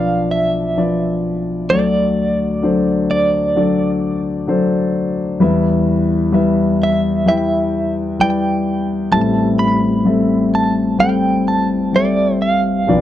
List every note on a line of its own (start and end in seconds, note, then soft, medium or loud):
0.00 1.66 B1 soft
0.00 1.66 B2 soft
0.00 0.77 F3 soft
0.00 0.77 D4 soft
0.00 0.78 B4 soft
0.00 0.78 D5 medium
0.00 0.31 F5 medium
0.31 1.66 E5 medium
0.77 1.49 F3 soft
0.77 1.49 D4 soft
0.77 1.49 B4 soft
0.77 1.49 D5 soft
1.70 5.36 D2 soft
1.70 5.36 D3 soft
1.70 2.42 F#3 soft
1.70 2.42 D4 soft
1.70 2.42 A4 soft
1.70 3.10 D5 medium
1.70 2.42 D5 medium
2.63 3.34 F#3 soft
2.63 3.34 D4 soft
2.63 3.35 A4 soft
2.63 3.35 C5 medium
3.11 4.91 D5 medium
3.56 4.27 F#3 medium
3.56 4.27 D4 soft
3.56 4.27 A4 soft
3.56 4.28 D5 medium
4.47 5.19 F#3 medium
4.47 5.19 D4 medium
4.47 5.19 A4 medium
4.47 5.20 C5 medium
5.40 9.08 E2 medium
5.40 9.08 E3 medium
5.40 6.12 G3 medium
5.40 6.12 E4 medium
5.40 6.12 B4 medium
5.40 6.13 E5 medium
6.32 7.05 G3 medium
6.32 7.05 E4 medium
6.32 7.05 B4 medium
6.32 7.05 E5 medium
6.83 7.27 E5 medium
7.26 7.98 G3 medium
7.26 7.98 E4 soft
7.26 7.98 B4 soft
7.26 8.21 E5 medium
7.26 7.99 G5 medium
8.19 8.91 G3 soft
8.19 8.91 E4 soft
8.19 8.92 B4 soft
8.19 8.92 D5 medium
8.19 9.12 G5 medium
9.12 12.84 A1 soft
9.12 12.84 A2 soft
9.12 9.84 G3 medium
9.12 9.84 C4 soft
9.12 9.84 A4 soft
9.12 9.85 E5 medium
9.12 9.56 A5 medium
9.59 10.49 B5 medium
10.05 10.78 G3 medium
10.05 10.78 C4 soft
10.05 10.78 A4 soft
10.05 10.78 E5 medium
10.55 10.97 A5 medium
10.99 11.72 G3 soft
10.99 11.72 C4 soft
10.99 11.72 A4 soft
10.99 11.72 G5 medium
10.99 11.48 G5 medium
11.48 12.38 A5 medium
11.93 12.66 G3 soft
11.93 12.66 C4 soft
11.93 12.67 A4 soft
11.93 12.42 D5 medium
11.93 12.67 E5 soft
12.42 13.01 F5 medium
12.87 13.01 B1 soft
12.87 13.01 B2 soft
12.87 13.01 F3 medium
12.87 13.01 D4 medium
12.87 13.01 B4 soft
12.87 13.01 D5 medium